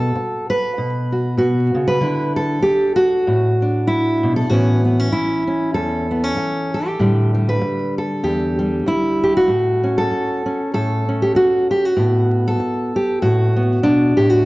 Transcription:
Already playing: B2 F#4 A4
0.16 muted steel-string acoustic guitar stroke
0.50 B4
0.78 B2
1.12 F#4
1.37 B2 F#4
1.75 C#3
1.88 B4
2.01 D3 D4 E4
2.36 A4
2.62 G4, muted steel-string acoustic guitar stroke
2.96 F#4
3.27 A2
3.62 D4
3.87 E4
4.23 B2
4.36 A4
4.49 A2 E3 B3 C#4 F#4
4.85 B3
5.00 C#4
5.12 E4, muted steel-string acoustic guitar stroke
5.47 C#4
5.74 E2 A4
6.11 B3
6.24 C#4
6.37 muted steel-string acoustic guitar stroke
6.74 A4
6.86 G4
6.99 A2 D3 G3
7.35 G3
7.49 B4
7.61 muted steel-string acoustic guitar stroke
7.98 A4
8.23 E2 G4
8.59 G3
8.86 E4, muted steel-string acoustic guitar stroke
9.24 G4
9.37 F#4
9.48 A2
9.83 C#4
9.98 A4
10.11 muted steel-string acoustic guitar stroke
10.46 C#4
10.74 A2 A4
11.09 C#4
11.22 G4
11.35 F#4, muted steel-string acoustic guitar stroke
11.71 G4
11.85 F#4
11.97 A2 B3
12.48 A4
12.60 muted steel-string acoustic guitar stroke
12.96 G4
13.22 A2 F#4
13.56 B3
13.83 B2 D4
14.17 A2 G4
14.30 F#4

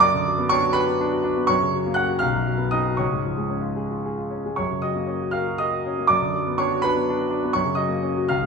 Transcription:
Already playing: F#2
0.00 D5 D6
0.14 D3
0.26 F#3
0.38 B3
0.49 D4 C#5 C#6
0.62 F#4
0.73 D4 B4 B5
0.88 B3
1.01 D4
1.12 F#4
1.24 D4
1.37 B3
1.47 F#2 C#5 C#6
1.62 C#3
1.74 F#3
1.86 A#3
1.94 C#4 F#5 F#6
2.08 F#4
2.19 B1 F5 F6
2.34 F#2
2.47 F#3
2.58 B3
2.71 D#4 D#5 D#6
2.86 F#4
2.97 C#2 C#5 C#6
3.12 G#2
3.25 F3
3.38 G#3
3.50 C#4
3.61 F4
3.76 G#4
3.90 F4
4.06 G#4
4.17 F4
4.30 C#4
4.46 G#3
4.56 F#2 C#5 C#6
4.71 C#3
4.82 F#3 D#5 D#6
4.96 A#3
5.07 C#4
5.22 F#4
5.31 A#4 F5 F6
5.47 F#4
5.58 A#4 D#5 D#6
5.72 F#4
5.86 C#4
5.98 A#3
6.07 F#2 D5 D6
6.22 D3
6.35 F#3
6.47 B3
6.58 D4 C#5 C#6
6.71 F#4
6.82 D4 B4 B5
6.96 B3
7.09 D4
7.20 F#4
7.30 D4
7.44 B3
7.53 F#2 C#5 C#6
7.65 C#3
7.75 F#3 D#5 D#6
7.89 A#3
8.02 C#4
8.16 F#4
8.29 C#2 F5 F6
8.42 G#2

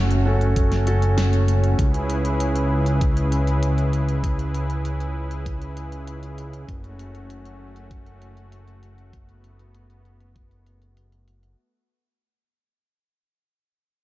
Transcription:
Already playing: F#1 A3 C#4 F#4 A4
0.11 closed hi-hat
0.26 C#4 F#4 A4
0.41 closed hi-hat
0.56 kick, closed hi-hat
0.72 snare, closed hi-hat
0.87 C#4 F#4 A4, closed hi-hat
1.02 closed hi-hat
1.18 snare, closed hi-hat
1.33 closed hi-hat
1.48 closed hi-hat
1.64 closed hi-hat
1.79 C#2 C#3 E4 G#4 B4, kick, closed hi-hat
1.94 closed hi-hat
2.10 closed hi-hat
2.25 closed hi-hat
2.40 closed hi-hat
2.56 closed hi-hat
2.86 closed hi-hat
3.01 kick, closed hi-hat
3.17 closed hi-hat
3.32 closed hi-hat
3.47 closed hi-hat
3.63 closed hi-hat
3.78 closed hi-hat
3.93 closed hi-hat
4.09 closed hi-hat
4.24 kick, closed hi-hat
4.39 closed hi-hat
4.55 closed hi-hat
4.70 closed hi-hat
4.85 closed hi-hat
5.00 closed hi-hat
5.31 closed hi-hat
5.46 kick, closed hi-hat
5.62 closed hi-hat
5.77 closed hi-hat
5.92 closed hi-hat
6.07 closed hi-hat
6.23 closed hi-hat
6.38 closed hi-hat
6.53 closed hi-hat
6.68 F#1 A3 C#4 F#4, kick, closed hi-hat
6.84 closed hi-hat
6.99 closed hi-hat
7.15 closed hi-hat
7.30 closed hi-hat
7.45 closed hi-hat
7.76 closed hi-hat
7.91 kick, closed hi-hat
8.06 closed hi-hat
8.22 closed hi-hat
8.37 closed hi-hat
8.52 closed hi-hat
8.68 closed hi-hat
8.83 closed hi-hat
8.98 closed hi-hat
9.13 B3, kick, closed hi-hat
9.29 closed hi-hat
9.44 closed hi-hat
9.59 closed hi-hat
9.75 closed hi-hat
9.90 closed hi-hat
10.05 closed hi-hat
10.21 closed hi-hat
10.36 kick, closed hi-hat
10.51 closed hi-hat
10.66 closed hi-hat
10.82 closed hi-hat
10.97 closed hi-hat
11.12 closed hi-hat
11.28 closed hi-hat
11.43 closed hi-hat

